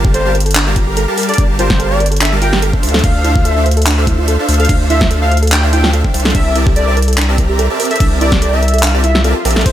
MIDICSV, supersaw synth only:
0, 0, Header, 1, 2, 480
1, 0, Start_track
1, 0, Tempo, 413793
1, 1603, Time_signature, 4, 2, 24, 8
1, 11276, End_track
2, 0, Start_track
2, 0, Title_t, "Supersaw synth"
2, 0, Program_c, 0, 81
2, 0, Note_on_c, 0, 55, 99
2, 0, Note_on_c, 0, 67, 94
2, 0, Note_on_c, 0, 70, 94
2, 0, Note_on_c, 0, 77, 91
2, 0, Note_on_c, 0, 81, 110
2, 261, Note_off_c, 0, 70, 0
2, 261, Note_off_c, 0, 77, 0
2, 262, Note_off_c, 0, 55, 0
2, 262, Note_off_c, 0, 67, 0
2, 262, Note_off_c, 0, 81, 0
2, 293, Note_on_c, 0, 55, 78
2, 293, Note_on_c, 0, 70, 70
2, 294, Note_on_c, 0, 67, 72
2, 294, Note_on_c, 0, 77, 74
2, 294, Note_on_c, 0, 81, 88
2, 389, Note_off_c, 0, 55, 0
2, 389, Note_off_c, 0, 67, 0
2, 389, Note_off_c, 0, 70, 0
2, 389, Note_off_c, 0, 77, 0
2, 389, Note_off_c, 0, 81, 0
2, 774, Note_on_c, 0, 67, 82
2, 774, Note_on_c, 0, 81, 99
2, 775, Note_on_c, 0, 55, 90
2, 775, Note_on_c, 0, 70, 83
2, 775, Note_on_c, 0, 77, 83
2, 862, Note_off_c, 0, 55, 0
2, 862, Note_off_c, 0, 67, 0
2, 862, Note_off_c, 0, 70, 0
2, 862, Note_off_c, 0, 81, 0
2, 863, Note_off_c, 0, 77, 0
2, 883, Note_on_c, 0, 55, 79
2, 883, Note_on_c, 0, 67, 71
2, 883, Note_on_c, 0, 82, 87
2, 884, Note_on_c, 0, 70, 74
2, 884, Note_on_c, 0, 77, 71
2, 1221, Note_off_c, 0, 55, 0
2, 1221, Note_off_c, 0, 67, 0
2, 1221, Note_off_c, 0, 82, 0
2, 1222, Note_off_c, 0, 70, 0
2, 1222, Note_off_c, 0, 77, 0
2, 1252, Note_on_c, 0, 55, 88
2, 1252, Note_on_c, 0, 81, 96
2, 1253, Note_on_c, 0, 67, 80
2, 1253, Note_on_c, 0, 70, 80
2, 1253, Note_on_c, 0, 77, 78
2, 1577, Note_off_c, 0, 55, 0
2, 1577, Note_off_c, 0, 67, 0
2, 1577, Note_off_c, 0, 70, 0
2, 1577, Note_off_c, 0, 77, 0
2, 1577, Note_off_c, 0, 81, 0
2, 1604, Note_on_c, 0, 55, 82
2, 1604, Note_on_c, 0, 67, 76
2, 1604, Note_on_c, 0, 70, 75
2, 1604, Note_on_c, 0, 77, 76
2, 1817, Note_off_c, 0, 55, 0
2, 1817, Note_off_c, 0, 67, 0
2, 1817, Note_off_c, 0, 70, 0
2, 1817, Note_off_c, 0, 77, 0
2, 1847, Note_on_c, 0, 55, 98
2, 1847, Note_on_c, 0, 67, 90
2, 1847, Note_on_c, 0, 77, 94
2, 1848, Note_on_c, 0, 70, 92
2, 1848, Note_on_c, 0, 81, 109
2, 2183, Note_off_c, 0, 55, 0
2, 2183, Note_off_c, 0, 67, 0
2, 2183, Note_off_c, 0, 77, 0
2, 2183, Note_off_c, 0, 81, 0
2, 2184, Note_off_c, 0, 70, 0
2, 2214, Note_on_c, 0, 67, 73
2, 2214, Note_on_c, 0, 70, 72
2, 2214, Note_on_c, 0, 77, 71
2, 2214, Note_on_c, 0, 81, 85
2, 2215, Note_on_c, 0, 55, 80
2, 2309, Note_off_c, 0, 55, 0
2, 2309, Note_off_c, 0, 67, 0
2, 2309, Note_off_c, 0, 70, 0
2, 2309, Note_off_c, 0, 77, 0
2, 2309, Note_off_c, 0, 81, 0
2, 2693, Note_on_c, 0, 70, 80
2, 2694, Note_on_c, 0, 55, 91
2, 2694, Note_on_c, 0, 67, 79
2, 2694, Note_on_c, 0, 77, 82
2, 2694, Note_on_c, 0, 81, 101
2, 2782, Note_off_c, 0, 55, 0
2, 2782, Note_off_c, 0, 67, 0
2, 2782, Note_off_c, 0, 70, 0
2, 2782, Note_off_c, 0, 77, 0
2, 2782, Note_off_c, 0, 81, 0
2, 2804, Note_on_c, 0, 67, 70
2, 2804, Note_on_c, 0, 82, 85
2, 2805, Note_on_c, 0, 55, 78
2, 2805, Note_on_c, 0, 70, 71
2, 2805, Note_on_c, 0, 77, 72
2, 3142, Note_off_c, 0, 55, 0
2, 3142, Note_off_c, 0, 67, 0
2, 3142, Note_off_c, 0, 70, 0
2, 3142, Note_off_c, 0, 77, 0
2, 3142, Note_off_c, 0, 82, 0
2, 3171, Note_on_c, 0, 72, 78
2, 3171, Note_on_c, 0, 77, 97
2, 3172, Note_on_c, 0, 62, 86
2, 3172, Note_on_c, 0, 69, 77
2, 3172, Note_on_c, 0, 76, 81
2, 3496, Note_off_c, 0, 62, 0
2, 3496, Note_off_c, 0, 72, 0
2, 3496, Note_off_c, 0, 76, 0
2, 3496, Note_off_c, 0, 77, 0
2, 3497, Note_off_c, 0, 69, 0
2, 3522, Note_on_c, 0, 62, 84
2, 3522, Note_on_c, 0, 72, 75
2, 3522, Note_on_c, 0, 77, 90
2, 3523, Note_on_c, 0, 69, 76
2, 3523, Note_on_c, 0, 76, 75
2, 3736, Note_off_c, 0, 62, 0
2, 3736, Note_off_c, 0, 69, 0
2, 3736, Note_off_c, 0, 72, 0
2, 3736, Note_off_c, 0, 77, 0
2, 3737, Note_off_c, 0, 76, 0
2, 3762, Note_on_c, 0, 76, 90
2, 3763, Note_on_c, 0, 69, 91
2, 3763, Note_on_c, 0, 77, 110
2, 3764, Note_on_c, 0, 62, 99
2, 3764, Note_on_c, 0, 72, 91
2, 4101, Note_off_c, 0, 69, 0
2, 4101, Note_off_c, 0, 72, 0
2, 4101, Note_off_c, 0, 76, 0
2, 4101, Note_off_c, 0, 77, 0
2, 4102, Note_off_c, 0, 62, 0
2, 4132, Note_on_c, 0, 62, 80
2, 4133, Note_on_c, 0, 69, 70
2, 4133, Note_on_c, 0, 72, 72
2, 4133, Note_on_c, 0, 76, 73
2, 4133, Note_on_c, 0, 77, 88
2, 4228, Note_off_c, 0, 62, 0
2, 4228, Note_off_c, 0, 77, 0
2, 4229, Note_off_c, 0, 69, 0
2, 4229, Note_off_c, 0, 72, 0
2, 4229, Note_off_c, 0, 76, 0
2, 4613, Note_on_c, 0, 62, 89
2, 4613, Note_on_c, 0, 76, 80
2, 4613, Note_on_c, 0, 77, 98
2, 4614, Note_on_c, 0, 69, 82
2, 4614, Note_on_c, 0, 72, 83
2, 4701, Note_off_c, 0, 76, 0
2, 4702, Note_off_c, 0, 62, 0
2, 4702, Note_off_c, 0, 69, 0
2, 4702, Note_off_c, 0, 72, 0
2, 4702, Note_off_c, 0, 77, 0
2, 4726, Note_on_c, 0, 69, 70
2, 4726, Note_on_c, 0, 72, 73
2, 4727, Note_on_c, 0, 62, 76
2, 5063, Note_off_c, 0, 62, 0
2, 5063, Note_off_c, 0, 69, 0
2, 5063, Note_off_c, 0, 72, 0
2, 5093, Note_on_c, 0, 76, 82
2, 5094, Note_on_c, 0, 62, 85
2, 5094, Note_on_c, 0, 69, 79
2, 5094, Note_on_c, 0, 77, 96
2, 5095, Note_on_c, 0, 72, 79
2, 5417, Note_off_c, 0, 76, 0
2, 5417, Note_off_c, 0, 77, 0
2, 5418, Note_off_c, 0, 62, 0
2, 5418, Note_off_c, 0, 69, 0
2, 5418, Note_off_c, 0, 72, 0
2, 5441, Note_on_c, 0, 69, 78
2, 5441, Note_on_c, 0, 72, 76
2, 5442, Note_on_c, 0, 62, 83
2, 5442, Note_on_c, 0, 76, 78
2, 5442, Note_on_c, 0, 77, 93
2, 5656, Note_off_c, 0, 62, 0
2, 5656, Note_off_c, 0, 69, 0
2, 5656, Note_off_c, 0, 72, 0
2, 5656, Note_off_c, 0, 76, 0
2, 5656, Note_off_c, 0, 77, 0
2, 5685, Note_on_c, 0, 69, 91
2, 5686, Note_on_c, 0, 72, 91
2, 5686, Note_on_c, 0, 76, 90
2, 5686, Note_on_c, 0, 77, 114
2, 5687, Note_on_c, 0, 62, 99
2, 6022, Note_off_c, 0, 69, 0
2, 6023, Note_off_c, 0, 62, 0
2, 6023, Note_off_c, 0, 72, 0
2, 6023, Note_off_c, 0, 76, 0
2, 6023, Note_off_c, 0, 77, 0
2, 6051, Note_on_c, 0, 72, 73
2, 6052, Note_on_c, 0, 62, 80
2, 6053, Note_on_c, 0, 69, 71
2, 6053, Note_on_c, 0, 76, 72
2, 6053, Note_on_c, 0, 77, 88
2, 6148, Note_off_c, 0, 62, 0
2, 6148, Note_off_c, 0, 69, 0
2, 6148, Note_off_c, 0, 72, 0
2, 6149, Note_off_c, 0, 76, 0
2, 6149, Note_off_c, 0, 77, 0
2, 6531, Note_on_c, 0, 62, 92
2, 6531, Note_on_c, 0, 69, 83
2, 6531, Note_on_c, 0, 72, 81
2, 6531, Note_on_c, 0, 76, 81
2, 6531, Note_on_c, 0, 77, 99
2, 6620, Note_off_c, 0, 76, 0
2, 6621, Note_off_c, 0, 62, 0
2, 6621, Note_off_c, 0, 69, 0
2, 6621, Note_off_c, 0, 72, 0
2, 6621, Note_off_c, 0, 77, 0
2, 6642, Note_on_c, 0, 62, 80
2, 6642, Note_on_c, 0, 72, 70
2, 6643, Note_on_c, 0, 69, 73
2, 6643, Note_on_c, 0, 76, 74
2, 6644, Note_on_c, 0, 77, 88
2, 6981, Note_off_c, 0, 62, 0
2, 6981, Note_off_c, 0, 69, 0
2, 6981, Note_off_c, 0, 72, 0
2, 6981, Note_off_c, 0, 76, 0
2, 6982, Note_off_c, 0, 77, 0
2, 7012, Note_on_c, 0, 69, 77
2, 7013, Note_on_c, 0, 62, 88
2, 7013, Note_on_c, 0, 72, 83
2, 7013, Note_on_c, 0, 77, 96
2, 7337, Note_off_c, 0, 62, 0
2, 7337, Note_off_c, 0, 69, 0
2, 7337, Note_off_c, 0, 72, 0
2, 7337, Note_off_c, 0, 77, 0
2, 7363, Note_on_c, 0, 60, 85
2, 7363, Note_on_c, 0, 74, 78
2, 7363, Note_on_c, 0, 81, 93
2, 7364, Note_on_c, 0, 67, 76
2, 7364, Note_on_c, 0, 70, 76
2, 7364, Note_on_c, 0, 76, 75
2, 7577, Note_off_c, 0, 60, 0
2, 7577, Note_off_c, 0, 67, 0
2, 7577, Note_off_c, 0, 70, 0
2, 7577, Note_off_c, 0, 74, 0
2, 7577, Note_off_c, 0, 76, 0
2, 7577, Note_off_c, 0, 81, 0
2, 7603, Note_on_c, 0, 67, 90
2, 7603, Note_on_c, 0, 74, 89
2, 7603, Note_on_c, 0, 76, 90
2, 7604, Note_on_c, 0, 60, 99
2, 7604, Note_on_c, 0, 70, 93
2, 7604, Note_on_c, 0, 81, 110
2, 7941, Note_off_c, 0, 67, 0
2, 7941, Note_off_c, 0, 74, 0
2, 7941, Note_off_c, 0, 76, 0
2, 7941, Note_off_c, 0, 81, 0
2, 7942, Note_off_c, 0, 60, 0
2, 7942, Note_off_c, 0, 70, 0
2, 7972, Note_on_c, 0, 70, 72
2, 7973, Note_on_c, 0, 60, 81
2, 7973, Note_on_c, 0, 67, 72
2, 7973, Note_on_c, 0, 74, 73
2, 7973, Note_on_c, 0, 76, 71
2, 7973, Note_on_c, 0, 81, 86
2, 8068, Note_off_c, 0, 60, 0
2, 8068, Note_off_c, 0, 67, 0
2, 8068, Note_off_c, 0, 70, 0
2, 8068, Note_off_c, 0, 74, 0
2, 8068, Note_off_c, 0, 76, 0
2, 8068, Note_off_c, 0, 81, 0
2, 8453, Note_on_c, 0, 60, 89
2, 8453, Note_on_c, 0, 70, 82
2, 8453, Note_on_c, 0, 76, 82
2, 8453, Note_on_c, 0, 81, 96
2, 8454, Note_on_c, 0, 67, 84
2, 8454, Note_on_c, 0, 74, 80
2, 8542, Note_off_c, 0, 60, 0
2, 8542, Note_off_c, 0, 67, 0
2, 8542, Note_off_c, 0, 70, 0
2, 8542, Note_off_c, 0, 74, 0
2, 8542, Note_off_c, 0, 76, 0
2, 8542, Note_off_c, 0, 81, 0
2, 8564, Note_on_c, 0, 60, 78
2, 8564, Note_on_c, 0, 74, 71
2, 8564, Note_on_c, 0, 76, 73
2, 8564, Note_on_c, 0, 82, 86
2, 8565, Note_on_c, 0, 67, 72
2, 8565, Note_on_c, 0, 70, 72
2, 8901, Note_off_c, 0, 82, 0
2, 8902, Note_off_c, 0, 60, 0
2, 8902, Note_off_c, 0, 67, 0
2, 8902, Note_off_c, 0, 70, 0
2, 8902, Note_off_c, 0, 74, 0
2, 8902, Note_off_c, 0, 76, 0
2, 8932, Note_on_c, 0, 67, 82
2, 8932, Note_on_c, 0, 81, 93
2, 8933, Note_on_c, 0, 60, 85
2, 8933, Note_on_c, 0, 70, 80
2, 8933, Note_on_c, 0, 74, 82
2, 8933, Note_on_c, 0, 76, 81
2, 9257, Note_off_c, 0, 60, 0
2, 9257, Note_off_c, 0, 67, 0
2, 9257, Note_off_c, 0, 70, 0
2, 9257, Note_off_c, 0, 74, 0
2, 9257, Note_off_c, 0, 76, 0
2, 9257, Note_off_c, 0, 81, 0
2, 9286, Note_on_c, 0, 67, 77
2, 9286, Note_on_c, 0, 74, 76
2, 9498, Note_off_c, 0, 67, 0
2, 9498, Note_off_c, 0, 74, 0
2, 9524, Note_on_c, 0, 70, 90
2, 9525, Note_on_c, 0, 60, 100
2, 9525, Note_on_c, 0, 67, 92
2, 9525, Note_on_c, 0, 74, 90
2, 9525, Note_on_c, 0, 76, 93
2, 9525, Note_on_c, 0, 81, 110
2, 9862, Note_off_c, 0, 60, 0
2, 9862, Note_off_c, 0, 67, 0
2, 9862, Note_off_c, 0, 70, 0
2, 9862, Note_off_c, 0, 74, 0
2, 9862, Note_off_c, 0, 76, 0
2, 9862, Note_off_c, 0, 81, 0
2, 9895, Note_on_c, 0, 60, 78
2, 9895, Note_on_c, 0, 67, 72
2, 9895, Note_on_c, 0, 74, 72
2, 9895, Note_on_c, 0, 76, 73
2, 9895, Note_on_c, 0, 81, 88
2, 9896, Note_on_c, 0, 70, 72
2, 9989, Note_off_c, 0, 60, 0
2, 9989, Note_off_c, 0, 67, 0
2, 9989, Note_off_c, 0, 74, 0
2, 9990, Note_off_c, 0, 70, 0
2, 9990, Note_off_c, 0, 76, 0
2, 9990, Note_off_c, 0, 81, 0
2, 10374, Note_on_c, 0, 67, 81
2, 10375, Note_on_c, 0, 60, 89
2, 10375, Note_on_c, 0, 70, 82
2, 10375, Note_on_c, 0, 74, 83
2, 10375, Note_on_c, 0, 76, 81
2, 10375, Note_on_c, 0, 81, 100
2, 10462, Note_off_c, 0, 67, 0
2, 10462, Note_off_c, 0, 70, 0
2, 10462, Note_off_c, 0, 76, 0
2, 10463, Note_off_c, 0, 60, 0
2, 10463, Note_off_c, 0, 74, 0
2, 10463, Note_off_c, 0, 81, 0
2, 10725, Note_on_c, 0, 60, 86
2, 10725, Note_on_c, 0, 70, 80
2, 10725, Note_on_c, 0, 76, 81
2, 10725, Note_on_c, 0, 81, 96
2, 10726, Note_on_c, 0, 67, 82
2, 10726, Note_on_c, 0, 74, 83
2, 10835, Note_off_c, 0, 76, 0
2, 10835, Note_off_c, 0, 81, 0
2, 10836, Note_off_c, 0, 60, 0
2, 10836, Note_off_c, 0, 67, 0
2, 10836, Note_off_c, 0, 70, 0
2, 10836, Note_off_c, 0, 74, 0
2, 10964, Note_on_c, 0, 60, 90
2, 10964, Note_on_c, 0, 74, 82
2, 10964, Note_on_c, 0, 76, 82
2, 10964, Note_on_c, 0, 81, 100
2, 10965, Note_on_c, 0, 67, 82
2, 10965, Note_on_c, 0, 70, 83
2, 11177, Note_off_c, 0, 60, 0
2, 11177, Note_off_c, 0, 74, 0
2, 11177, Note_off_c, 0, 76, 0
2, 11177, Note_off_c, 0, 81, 0
2, 11178, Note_off_c, 0, 67, 0
2, 11178, Note_off_c, 0, 70, 0
2, 11203, Note_on_c, 0, 65, 86
2, 11203, Note_on_c, 0, 72, 78
2, 11203, Note_on_c, 0, 76, 77
2, 11205, Note_on_c, 0, 79, 77
2, 11205, Note_on_c, 0, 81, 91
2, 11276, Note_off_c, 0, 65, 0
2, 11276, Note_off_c, 0, 72, 0
2, 11276, Note_off_c, 0, 76, 0
2, 11276, Note_off_c, 0, 79, 0
2, 11276, Note_off_c, 0, 81, 0
2, 11276, End_track
0, 0, End_of_file